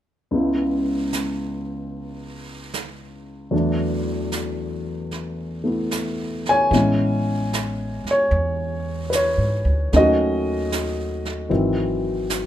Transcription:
0.31 C#2 C#3 G#3 B3, brush sweep
0.36 E4
1.13 snare, hi-hat pedal
1.93 brush sweep
2.74 snare, hi-hat pedal
3.51 E2 E3 F#3 A3 D4, brush sweep
4.32 snare, hi-hat pedal
5.11 brush sweep, snare
5.64 A3 B3 E4
5.91 snare, hi-hat pedal
6.45 G#5, snare
6.51 C#5
6.71 A1 E3 G#3 B3, brush sweep, snare
6.76 C#4
7.53 snare, hi-hat pedal
8.05 muted upright bass stroke, snare
8.11 C#5
8.31 E2, brush sweep
9.10 B4, snare, hi-hat pedal
9.15 C#5
9.38 G#2
9.65 D2
9.93 D#2 D#3 F#3 A3 C#4 D#5, brush sweep, snare
9.98 F#4
10.72 snare, hi-hat pedal
11.25 snare
11.49 G#1 D#3 E3 F#3 C4, brush sweep
12.30 snare, hi-hat pedal

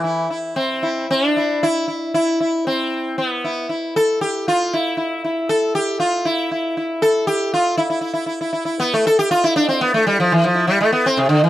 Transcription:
Already playing: E3
0.04 E4
0.30 E4
0.56 C4
0.83 E4
1.11 D4
1.37 E4
1.63 E4
1.88 E4
2.14 E4
2.40 E4
2.67 C4
3.18 B3
3.44 E4
3.69 E4
3.96 A4
4.21 G4
4.48 F4
4.73 E4
4.97 E4
5.24 E4
5.49 A4
5.75 G4
6.00 F4
6.25 E4
6.51 E4
6.77 E4
7.02 A4
7.27 G4
7.54 F4
7.77 E4
7.90 E4
8.01 E4
8.14 E4
8.26 E4
8.41 E4
8.53 E4
8.65 E4
8.80 B3
8.94 A3
9.07 A4
9.19 G4
9.31 F4
9.44 E4
9.56 D4
9.69 C4
9.81 B3
9.94 A3
10.07 G3
10.20 F3
10.32 E3
10.44 F3
10.55 E4
10.67 G3
10.80 A3
10.92 B3
11.06 C4
11.17 C3
11.29 D3
11.44 E3

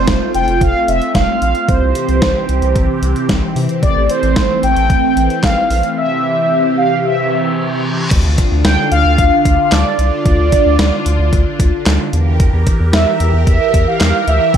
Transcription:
Already playing: A3 C4 F4 C5
0.08 F1, kick, snare, closed hi-hat
0.34 F1 G5, closed hi-hat
0.48 F1, closed hi-hat
0.61 F1 F5, kick, closed hi-hat
0.88 F1 E5, closed hi-hat
1.02 closed hi-hat
1.15 F1 F5, kick, snare, closed hi-hat
1.42 A#1 F5, closed hi-hat
1.55 closed hi-hat
1.68 C2 C3 E3 G4 C5, kick, closed hi-hat
1.82 C2
1.95 closed hi-hat
2.09 C2, closed hi-hat
2.22 C2, kick, snare, closed hi-hat
2.49 C2, closed hi-hat
2.62 C2, closed hi-hat
2.76 C2, kick, closed hi-hat
3.02 C2, closed hi-hat
3.16 closed hi-hat
3.29 C2, kick, snare, closed hi-hat
3.56 C3, open hi-hat
3.69 closed hi-hat
3.83 A1 A3 D5, kick, closed hi-hat
3.96 A1
4.10 C5, closed hi-hat
4.23 A1, closed hi-hat
4.36 A1, kick, snare, closed hi-hat
4.63 A1 G5, closed hi-hat
4.76 A1, closed hi-hat
4.90 A1, kick, closed hi-hat
5.17 A1, closed hi-hat
5.30 closed hi-hat
5.43 A1 F5, kick, snare, clap, closed hi-hat
5.70 A#1, open hi-hat
5.83 closed hi-hat
5.97 C3 G4 E5
6.77 F5
7.04 E5, reverse cymbal
8.11 D2 D3 D4 F4, kick, closed hi-hat, crash
8.25 D2
8.38 kick, closed hi-hat
8.52 D2
8.65 D2 G5, snare, closed hi-hat
8.91 D2 F5, closed hi-hat
9.05 D2
9.18 D2, kick, closed hi-hat
9.45 D2, kick, closed hi-hat
9.72 D2 D5, snare, clap, closed hi-hat
9.99 C2, closed hi-hat
10.25 D2 D5, kick, closed hi-hat
10.39 D2
10.52 kick, closed hi-hat
10.66 D2
10.79 D2, snare, closed hi-hat
11.06 D2, closed hi-hat
11.19 D2
11.33 D2, kick, closed hi-hat
11.60 D2, kick, closed hi-hat
11.86 D2, snare, clap, closed hi-hat
12.13 E2 E3 G4 A#4, closed hi-hat
12.40 kick, closed hi-hat
12.53 E2
12.67 kick, closed hi-hat
12.80 E2
12.93 E2 E5, snare, closed hi-hat
13.20 E2, closed hi-hat
13.34 E2
13.47 E2 E5, kick, closed hi-hat
13.74 E2, kick, closed hi-hat
13.87 F5
14.01 E2, snare, clap, closed hi-hat
14.27 D2 E5, closed hi-hat
14.54 E2 G5, kick, closed hi-hat

